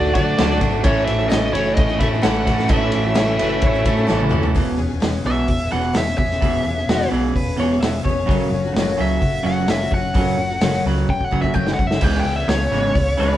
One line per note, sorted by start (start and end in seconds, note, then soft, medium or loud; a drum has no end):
0.00 0.11 D2 loud
0.00 0.16 A3 medium
0.00 0.14 D4 medium
0.00 0.20 D4 medium
0.00 0.82 D4 medium
0.00 0.12 F#4 medium
0.00 0.20 F#4 medium
0.00 0.82 F#4 medium
0.00 0.20 A4 medium
0.00 0.81 A4 medium
0.00 0.13 D5 medium
0.00 0.21 D5 medium
0.00 0.82 D5 medium
0.05 0.16 A3 soft
0.05 0.17 F#4 medium
0.05 0.16 A4 medium
0.13 0.35 D3 medium
0.13 0.37 F#3 medium
0.13 0.38 A3 medium
0.13 0.38 D4 medium
0.13 0.40 F#4 medium
0.13 0.58 D5 medium
0.13 kick loud
0.13 ride medium
0.18 0.37 A3 medium
0.18 0.38 F#4 medium
0.18 0.38 A4 medium
0.37 0.58 D2 medium
0.37 0.83 D3 medium
0.37 0.62 D3 medium
0.37 0.59 F#3 medium
0.37 0.61 A3 medium
0.37 0.63 A3 loud
0.37 0.66 D4 medium
0.37 0.61 D4 loud
0.37 0.67 F#4 medium
0.37 0.61 F#4 medium
0.37 0.59 F#4 loud
0.37 0.67 A4 medium
0.37 0.62 A4 medium
0.37 0.67 D5 medium
0.37 snare loud
0.37 ride loud
0.51 snare soft
0.60 0.81 G#1 medium
0.60 0.73 F#3 medium
0.60 0.73 A3 medium
0.60 0.84 A3 medium
0.60 0.84 D4 medium
0.60 0.83 F#4 medium
0.60 0.71 F#4 medium
0.60 0.71 A4 medium
0.60 kick medium
0.60 ride medium
0.72 0.83 A3 soft
0.72 0.84 F#4 soft
0.72 0.84 A4 medium
0.82 1.04 A1 loud
0.82 2.22 A2 medium
0.82 1.19 A2 medium
0.82 2.23 E3 medium
0.82 1.19 E3 medium
0.82 1.19 A3 medium
0.82 1.56 A3 loud
0.82 1.12 C#4 medium
0.82 4.52 C#4 medium
0.82 1.19 C#4 medium
0.82 1.55 C#4 loud
0.82 1.13 E4 medium
0.82 4.52 E4 medium
0.82 1.18 E4 loud
0.82 4.51 A4 medium
0.82 1.13 A4 medium
0.82 1.18 A4 medium
0.82 4.51 C#5 medium
0.82 1.05 C#5 medium
0.82 1.13 C#5 medium
0.82 kick loud
0.82 ride loud
0.87 1.52 E4 loud
1.05 1.27 A1 medium
1.05 1.28 E5 loud
1.05 ride medium
1.19 1.29 A3 soft
1.19 1.30 C#4 medium
1.19 1.29 E4 medium
1.19 1.31 A4 soft
1.29 1.50 A1 loud
1.29 1.88 A2 medium
1.29 2.22 E3 medium
1.29 1.88 A3 medium
1.29 1.59 C#4 medium
1.29 1.89 C#4 medium
1.29 1.59 E4 medium
1.29 1.89 E4 medium
1.29 1.60 A4 medium
1.29 1.87 A4 medium
1.29 1.60 C#5 medium
1.29 1.52 D#5 medium
1.29 snare loud
1.29 ride loud
1.53 1.73 F#1 medium
1.53 2.01 A3 medium
1.53 2.00 C#4 medium
1.53 1.98 E4 medium
1.53 1.74 C#5 medium
1.53 ride medium
1.75 1.97 A1 loud
1.75 2.06 C#4 medium
1.75 2.06 E4 medium
1.75 2.07 A4 medium
1.75 2.07 C#5 medium
1.75 2.00 D#5 loud
1.75 kick loud
1.75 ride loud
1.89 1.99 A3 soft
1.89 2.00 C#4 medium
1.89 2.00 E4 medium
1.89 2.00 A4 medium
1.99 2.20 A2 medium
1.99 2.12 A3 medium
1.99 2.24 A3 medium
1.99 2.25 C#4 medium
1.99 2.13 C#4 medium
1.99 2.25 E4 medium
1.99 2.13 E4 medium
1.99 2.07 E5 medium
1.99 kick medium
1.99 ride medium
2.03 2.11 A4 medium
2.12 2.22 A3 soft
2.12 2.23 C#4 medium
2.12 2.23 E4 soft
2.12 2.23 A4 medium
2.21 2.44 A1 loud
2.21 2.46 A2 medium
2.21 2.68 A2 medium
2.21 2.47 E3 medium
2.21 2.70 E3 loud
2.21 2.46 A3 medium
2.21 2.48 A3 loud
2.21 2.51 C#4 medium
2.21 2.46 C#4 medium
2.21 2.52 E4 medium
2.21 2.47 E4 medium
2.21 2.52 A4 medium
2.21 2.47 A4 medium
2.21 2.52 C#5 medium
2.21 2.71 F#5 loud
2.21 snare loud
2.21 ride loud
2.25 2.47 C#4 loud
2.25 2.45 E4 loud
2.45 2.66 A1 medium
2.45 2.59 A3 medium
2.45 2.69 A3 medium
2.45 2.59 C#4 medium
2.45 2.70 C#4 medium
2.45 2.71 E4 medium
2.45 2.59 E4 medium
2.45 2.57 A4 medium
2.45 kick medium
2.45 ride medium
2.58 2.68 A3 soft
2.58 2.69 C#4 soft
2.58 2.68 E4 medium
2.58 2.69 A4 medium
2.58 snare soft
2.68 2.89 A1 medium
2.68 3.04 A2 medium
2.68 3.63 A2 loud
2.68 3.04 E3 medium
2.68 3.63 E3 loud
2.68 3.04 A3 medium
2.68 3.41 A3 loud
2.68 2.98 C#4 medium
2.68 3.03 C#4 medium
2.68 3.39 C#4 loud
2.68 2.98 E4 medium
2.68 3.02 E4 medium
2.68 2.99 A4 medium
2.68 3.02 A4 loud
2.68 2.99 C#5 medium
2.68 4.05 E5 medium
2.68 kick loud
2.68 ride loud
2.72 3.38 E4 loud
2.92 3.13 A1 medium
2.92 ride medium
3.03 3.14 A3 soft
3.03 3.14 C#4 soft
3.03 3.15 E4 soft
3.03 3.15 A4 medium
3.14 3.36 A1 loud
3.14 3.74 A2 medium
3.14 3.74 E3 medium
3.14 3.74 A3 medium
3.14 3.74 C#4 medium
3.14 3.45 C#4 medium
3.14 3.45 E4 medium
3.14 3.74 E4 medium
3.14 3.72 A4 medium
3.14 3.46 A4 medium
3.14 3.46 C#5 medium
3.14 snare loud
3.14 ride loud
3.39 3.60 F#1 medium
3.39 3.88 A3 medium
3.39 3.86 C#4 medium
3.39 3.84 E4 medium
3.39 3.64 B4 medium
3.39 ride medium
3.62 3.82 A1 loud
3.62 3.91 C#4 medium
3.62 3.91 E4 medium
3.62 3.92 A4 medium
3.62 3.92 C#5 loud
3.62 kick loud
3.62 ride loud
3.66 3.87 C#5 medium
3.74 3.84 A3 medium
3.74 3.85 C#4 medium
3.74 3.86 E4 medium
3.74 3.86 A4 medium
3.85 4.06 A2 medium
3.85 3.98 A3 medium
3.85 4.09 A3 medium
3.85 3.97 C#4 medium
3.85 4.10 C#4 medium
3.85 4.10 E4 medium
3.85 3.96 E4 medium
3.85 4.32 A4 medium
3.85 3.96 A4 medium
3.85 kick medium
3.85 ride medium
3.97 4.07 A3 soft
3.97 4.08 C#4 medium
3.97 4.08 E4 medium
3.97 4.08 A4 medium
4.07 4.29 A1 loud
4.07 4.32 A2 loud
4.07 4.54 A2 medium
4.07 4.32 E3 medium
4.07 4.54 E3 medium
4.07 4.28 A3 medium
4.07 4.34 A3 loud
4.07 4.37 C#4 medium
4.07 4.30 C#4 medium
4.07 4.33 C#4 loud
4.07 4.38 E4 medium
4.07 4.31 E4 loud
4.07 4.38 A4 medium
4.07 4.32 A4 medium
4.07 4.38 C#5 loud
4.07 snare medium
4.11 4.31 E4 loud
4.20 high tom medium
4.29 4.53 D#2 medium
4.29 4.43 A3 medium
4.29 4.44 C#4 medium
4.29 4.54 E4 medium
4.29 4.42 E4 medium
4.29 4.41 A4 medium
4.29 mid tom loud
4.34 4.56 A3 medium
4.34 4.55 C#4 medium
4.43 4.54 A3 medium
4.43 4.55 C#4 medium
4.43 4.55 E4 medium
4.43 4.55 A4 medium
4.43 floor tom medium
4.55 4.74 E1 medium
4.55 4.77 E2 medium
4.55 4.78 B2 medium
4.55 4.75 E3 medium
4.55 4.79 E3 medium
4.55 4.76 B3 medium
4.55 4.76 C#4 medium
4.55 4.78 G#4 medium
4.55 kick loud
4.55 open hi-hat medium
4.76 4.97 E1 medium
4.76 5.00 E2 medium
4.76 5.00 B2 medium
4.76 4.89 E3 medium
4.76 4.90 B3 medium
4.76 4.88 C#4 medium
4.76 4.87 G#4 medium
4.89 5.01 B3 soft
4.89 5.00 C#4 medium
4.89 5.01 G#4 medium
5.00 5.20 E1 medium
5.00 5.23 E2 medium
5.00 5.24 B2 medium
5.00 5.21 E3 medium
5.00 5.22 B3 medium
5.00 5.23 C#4 medium
5.00 5.24 G#4 medium
5.00 snare loud
5.00 open hi-hat medium
5.22 5.43 B1 medium
5.22 5.48 E2 medium
5.22 5.36 E3 medium
5.22 5.35 B3 medium
5.22 5.34 C#4 medium
5.22 5.33 G#4 medium
5.27 5.48 B2 medium
5.27 5.48 E3 loud
5.27 5.71 E5 medium
5.34 5.70 B3 soft
5.34 5.71 C#4 soft
5.34 5.71 G#4 medium
5.48 5.67 E1 medium
5.48 5.70 E2 medium
5.48 5.70 B2 medium
5.48 kick medium
5.48 open hi-hat medium
5.71 5.91 E1 medium
5.71 5.93 E2 medium
5.71 5.94 B2 loud
5.71 5.83 E3 medium
5.71 5.94 E3 medium
5.71 5.82 B3 medium
5.71 5.81 C#4 medium
5.71 5.80 G#4 medium
5.71 5.95 F#5 medium
5.81 5.93 B3 soft
5.81 5.93 C#4 soft
5.81 5.93 G#4 medium
5.93 6.14 E1 medium
5.93 6.17 E2 medium
5.93 6.17 B2 medium
5.93 6.06 E3 medium
5.93 6.06 B3 medium
5.93 6.06 C#4 medium
5.93 6.05 G#4 medium
5.93 snare loud
5.93 open hi-hat medium
5.97 6.17 E5 medium
6.06 6.17 B3 soft
6.06 6.18 C#4 medium
6.06 6.18 G#4 medium
6.18 6.37 E1 medium
6.18 6.39 E2 medium
6.18 6.40 B2 medium
6.18 6.30 E3 medium
6.18 6.30 B3 medium
6.18 6.31 C#4 medium
6.18 6.31 G#4 medium
6.18 7.09 E5 medium
6.18 kick medium
6.31 6.42 B3 soft
6.31 6.43 C#4 soft
6.31 6.43 G#4 soft
6.31 snare soft
6.41 6.61 E1 loud
6.41 6.63 E2 medium
6.41 6.62 B2 medium
6.41 6.63 E3 medium
6.41 6.64 E3 loud
6.41 6.65 B3 medium
6.41 6.66 C#4 medium
6.41 6.67 G#4 medium
6.41 kick loud
6.41 open hi-hat medium
6.63 6.83 E1 medium
6.63 6.86 E2 medium
6.63 6.85 B2 medium
6.63 6.77 E3 medium
6.63 6.78 B3 medium
6.63 6.78 C#4 medium
6.68 6.76 G#4 medium
6.78 6.90 B3 soft
6.78 6.90 C#4 medium
6.78 6.89 G#4 medium
6.88 7.07 E1 medium
6.88 7.09 E2 medium
6.88 7.10 B2 medium
6.88 7.12 E3 medium
6.88 7.12 F#4 medium
6.88 snare loud
6.88 open hi-hat medium
6.92 7.12 B3 medium
6.92 7.13 C#4 medium
6.92 7.14 G#4 medium
7.02 snare soft
7.10 7.30 B1 medium
7.10 7.32 E2 medium
7.10 7.33 B2 medium
7.10 7.34 E3 loud
7.10 7.24 E3 medium
7.10 7.25 B3 medium
7.10 7.25 C#4 medium
7.10 7.35 G#4 medium
7.15 7.25 G#4 medium
7.26 7.59 B3 soft
7.26 7.60 C#4 medium
7.26 7.60 G#4 medium
7.34 7.54 E1 medium
7.34 7.56 E2 medium
7.34 7.56 B2 medium
7.34 7.58 B4 medium
7.34 kick medium
7.34 open hi-hat medium
7.57 7.76 E1 medium
7.57 7.79 E2 medium
7.57 7.79 B2 medium
7.57 7.80 E3 loud
7.57 7.71 E3 medium
7.57 7.82 C#5 medium
7.61 7.71 B3 medium
7.61 7.72 C#4 medium
7.61 7.71 G#4 medium
7.72 7.83 B3 medium
7.72 7.83 C#4 medium
7.72 7.83 G#4 medium
7.80 8.00 E1 medium
7.80 8.02 E2 medium
7.80 8.02 B2 medium
7.80 7.94 E3 medium
7.80 7.95 B3 medium
7.80 8.04 E5 medium
7.80 snare loud
7.80 open hi-hat medium
7.85 7.95 C#4 medium
7.85 7.93 G#4 loud
7.94 8.07 B3 medium
7.94 8.06 C#4 medium
7.94 8.06 G#4 medium
8.04 8.24 E1 medium
8.04 8.26 E2 medium
8.04 8.26 B2 medium
8.04 8.18 E3 medium
8.04 8.84 C#5 medium
8.04 kick medium
8.08 8.18 B3 medium
8.08 8.19 C#4 medium
8.08 8.18 G#4 medium
8.19 8.31 B3 soft
8.19 8.30 C#4 soft
8.19 8.30 G#4 medium
8.26 8.47 F#1 medium
8.26 8.49 F#2 medium
8.26 8.49 C#3 loud
8.26 8.50 F#3 loud
8.26 kick loud
8.26 open hi-hat medium
8.30 8.53 F#2 medium
8.30 8.53 C#3 medium
8.30 8.52 F#3 medium
8.30 8.52 A3 medium
8.30 8.53 C#4 loud
8.30 8.54 F#4 loud
8.50 8.70 F#1 medium
8.50 8.72 F#2 medium
8.50 8.72 C#3 medium
8.50 8.64 F#3 medium
8.50 8.64 A3 medium
8.50 8.65 C#4 medium
8.55 8.64 F#4 medium
8.65 8.77 F#3 soft
8.65 8.77 A3 medium
8.65 8.76 C#4 medium
8.65 8.76 F#4 medium
8.73 8.93 F#1 medium
8.73 8.95 F#2 medium
8.73 8.96 C#3 medium
8.73 snare loud
8.73 open hi-hat medium
8.77 9.00 F#2 medium
8.77 9.00 C#3 medium
8.77 8.99 F#3 medium
8.77 8.99 A3 medium
8.77 9.00 C#4 loud
8.77 9.01 F#4 loud
8.97 9.17 C#2 medium
8.97 9.20 F#2 medium
8.97 9.20 C#3 medium
8.97 9.21 F#3 medium
8.97 9.11 F#3 medium
8.97 9.11 A3 medium
8.97 9.45 E5 medium
9.01 9.11 C#4 medium
9.01 9.10 F#4 medium
9.11 9.44 F#3 soft
9.11 9.46 A3 soft
9.11 9.46 C#4 medium
9.11 9.46 F#4 medium
9.21 9.40 F#1 loud
9.21 9.42 F#2 medium
9.21 9.42 C#3 medium
9.21 kick medium
9.21 open hi-hat medium
9.43 9.63 F#1 medium
9.43 9.65 F#2 medium
9.43 9.66 C#3 medium
9.43 9.67 F#3 loud
9.43 9.57 F#3 medium
9.43 9.68 F#5 medium
9.48 9.58 A3 medium
9.48 9.58 C#4 medium
9.48 9.58 F#4 medium
9.59 9.67 F#3 soft
9.59 9.68 A3 soft
9.59 9.68 C#4 medium
9.59 9.68 F#4 medium
9.67 9.86 F#1 medium
9.67 9.89 F#2 medium
9.67 9.80 F#2 medium
9.67 9.89 C#3 medium
9.67 9.80 C#3 medium
9.67 9.80 F#3 medium
9.67 9.80 A3 medium
9.67 9.81 C#4 medium
9.67 9.81 F#4 medium
9.67 9.92 E5 medium
9.67 snare loud
9.67 open hi-hat medium
9.82 9.93 F#3 soft
9.82 9.93 A3 soft
9.82 9.93 C#4 medium
9.82 9.93 F#4 medium
9.91 10.10 F#1 medium
9.91 10.12 F#2 medium
9.91 10.13 C#3 medium
9.91 10.15 F#3 medium
9.91 10.84 F#5 medium
9.91 kick medium
9.95 10.16 A3 medium
9.95 10.16 C#4 medium
9.95 10.17 F#4 medium
10.14 10.34 F#1 medium
10.14 10.37 F#2 medium
10.14 10.39 F#2 medium
10.14 10.37 C#3 medium
10.14 10.39 C#3 medium
10.14 10.37 F#3 medium
10.14 10.38 F#3 medium
10.14 10.39 A3 medium
10.14 10.39 C#4 medium
10.14 10.40 F#4 medium
10.14 kick loud
10.14 open hi-hat medium
10.38 10.57 F#1 medium
10.38 10.59 F#2 medium
10.38 10.59 C#3 medium
10.38 10.50 F#3 medium
10.38 10.50 A3 medium
10.38 10.50 C#4 medium
10.42 10.49 F#4 medium
10.50 10.61 F#3 soft
10.50 10.60 A3 medium
10.50 10.61 C#4 medium
10.50 10.62 F#4 medium
10.60 10.80 F#1 medium
10.60 10.84 F#2 medium
10.60 10.83 F#2 medium
10.60 10.85 C#3 medium
10.60 10.83 C#3 medium
10.60 10.83 F#3 medium
10.60 10.84 A3 medium
10.60 10.85 C#4 loud
10.60 10.86 F#4 medium
10.60 snare loud
10.60 open hi-hat medium
10.73 snare soft
10.84 11.03 C#2 medium
10.84 11.08 F#2 medium
10.84 11.08 C#3 loud
10.84 10.96 F#3 medium
10.84 11.08 F#3 medium
10.84 10.97 A3 medium
10.84 10.96 C#4 medium
10.84 10.95 F#4 medium
10.96 11.30 F#3 soft
10.96 11.30 A3 soft
10.96 11.31 C#4 soft
10.96 11.31 F#4 soft
11.09 11.27 F#1 medium
11.09 11.30 F#2 medium
11.09 11.30 C#3 medium
11.09 11.24 G5 loud
11.09 kick medium
11.21 11.39 F#5 medium
11.21 kick medium
11.31 11.51 F#1 medium
11.31 11.54 F#2 medium
11.31 11.54 C#3 medium
11.31 11.43 F#3 medium
11.31 11.54 F#3 medium
11.31 11.41 A3 medium
11.31 11.42 C#4 medium
11.31 11.40 F#4 medium
11.31 kick medium
11.42 11.53 F#3 soft
11.42 11.53 A3 soft
11.42 11.54 C#4 soft
11.42 11.54 F#4 medium
11.42 11.54 E5 medium
11.42 kick medium
11.54 11.74 F#1 medium
11.54 11.66 F#2 medium
11.54 11.76 F#2 medium
11.54 11.66 C#3 medium
11.54 11.77 C#3 medium
11.54 11.66 F#3 medium
11.54 11.66 A3 medium
11.54 11.67 C#4 medium
11.54 11.65 F#4 medium
11.54 11.70 G5 loud
11.54 kick medium
11.66 11.78 F#3 soft
11.66 11.78 A3 soft
11.66 11.79 C#4 medium
11.66 11.78 F#4 medium
11.66 snare medium
11.74 11.87 F#5 medium
11.79 11.97 F#1 medium
11.79 12.00 F#2 medium
11.79 12.00 C#3 medium
11.79 11.91 F#3 medium
11.79 11.91 A3 medium
11.79 11.90 C#4 medium
11.79 11.89 F#4 medium
11.79 kick loud
11.87 12.02 F#4 soft
11.87 12.04 E5 medium
11.91 12.03 F#3 soft
11.91 12.03 A3 soft
11.91 12.02 C#4 soft
11.91 snare medium
11.99 12.21 C#2 medium
11.99 12.24 C#3 medium
11.99 12.26 C#3 medium
11.99 12.25 E3 medium
11.99 13.37 C#4 medium
11.99 13.37 E4 medium
11.99 13.37 G#4 medium
11.99 13.37 B4 medium
11.99 kick loud
11.99 open hi-hat medium
11.99 crash medium
12.04 12.25 G#3 loud
12.04 12.26 B3 medium
12.04 12.26 C#4 medium
12.04 12.26 G#4 medium
12.04 12.18 G5 medium
12.20 12.42 C#2 medium
12.20 12.36 G5 medium
12.25 12.46 C#3 medium
12.25 12.46 E3 medium
12.25 12.38 E3 medium
12.25 12.38 B3 medium
12.25 12.39 C#4 medium
12.29 12.39 G#4 medium
12.36 12.50 E5 medium
12.41 12.52 B3 soft
12.41 12.51 C#4 medium
12.41 12.50 G#4 medium
12.47 12.66 C#2 medium
12.47 12.69 C#3 medium
12.47 12.73 C#3 medium
12.47 12.69 E3 medium
12.47 13.37 C#5 loud
12.47 snare loud
12.47 open hi-hat medium
12.53 12.73 E3 medium
12.53 12.74 B3 medium
12.53 12.74 C#4 medium
12.53 12.74 G#4 medium
12.71 12.90 G#1 medium
12.71 12.93 C#3 loud
12.71 12.94 E3 loud
12.71 12.85 E3 medium
12.71 12.95 G#3 medium
12.76 12.85 B3 medium
12.76 12.86 C#4 medium
12.76 12.85 G#4 medium
12.87 13.20 B3 soft
12.87 13.20 C#4 medium
12.87 13.20 G#4 medium
12.94 13.14 C#2 medium
12.94 13.16 C#3 medium
12.94 13.16 E3 medium
12.94 kick medium
12.94 open hi-hat medium
13.17 13.37 C#2 medium
13.17 13.37 C#3 medium
13.17 13.37 E3 medium
13.17 13.31 E3 medium
13.17 13.37 G#3 loud
13.17 13.37 D4 medium
13.17 13.37 B4 medium
13.22 13.32 B3 medium
13.22 13.31 C#4 medium
13.22 13.31 G#4 medium
13.32 13.37 C#4 medium
13.32 13.37 G#4 medium